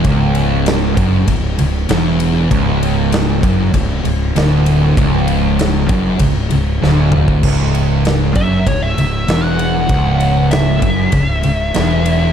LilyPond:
<<
  \new Staff \with { instrumentName = "Lead electric guitar" } { \time 4/4 \key cis \minor \tempo 4 = 98 r1 | r1 | r1 | r4. e''8 cis''16 e''4 fis''8.~ |
fis''4 e''2. | }
  \new Staff \with { instrumentName = "Distorted electric guitar" } { \clef bass \time 4/4 \key cis \minor cis,4. fis,8 cis,8 cis,8 e,4 | cis,4. fis,8 cis,8 cis,8 d,4 | cis,4. fis,8 cis,8 cis,8 d,4 | cis,4. fis,8 cis,8 cis,8 e,4 |
cis,4. fis,8 cis,8 cis,8 e,4 | }
  \new Staff \with { instrumentName = "Distorted electric guitar" } { \clef bass \time 4/4 \key cis \minor cis,4. fis,8 cis,8 cis,8 e,4 | cis,4. fis,8 cis,8 cis,8 d,4 | cis,4. fis,8 cis,8 cis,8 d,4 | cis,4. fis,8 cis,8 cis,8 e,4 |
cis,4. fis,8 cis,8 cis,8 e,4 | }
  \new Staff \with { instrumentName = "Fingered electric bass" } { \clef bass \time 4/4 \key cis \minor cis,,4. fis,,8 cis,,8 cis,,8 e,,4 | cis,,4. fis,,8 cis,,8 cis,,8 d,,4 | cis,,4. fis,,8 cis,,8 cis,,8 d,,4 | cis,,4. fis,,8 cis,,8 cis,,8 e,,4 |
cis,,4. fis,,8 cis,,8 cis,,8 e,,4 | }
  \new DrumStaff \with { instrumentName = "Drums" } \drummode { \time 4/4 <bd cymr>8 cymr8 <cymr sn>8 <bd cymr>8 <bd cymr>8 cymr8 <cymr sn>8 cymr8 | <bd cymr>8 cymr8 <cymr sn>8 <bd cymr>8 <bd cymr>8 cymr8 <cymr sn>8 cymr8 | <bd cymr>8 cymr8 <cymr sn>8 <bd cymr>8 <bd cymr>8 cymr8 sn8 toml16 bd16 | <cymc bd>8 cymr8 <cymr sn>8 <bd cymr>8 <bd cymr>8 cymr8 <cymr sn>8 cymr8 |
<bd cymr>8 cymr8 <cymr sn>8 <bd cymr>8 <bd cymr>8 cymr8 <cymr sn>8 cymr8 | }
>>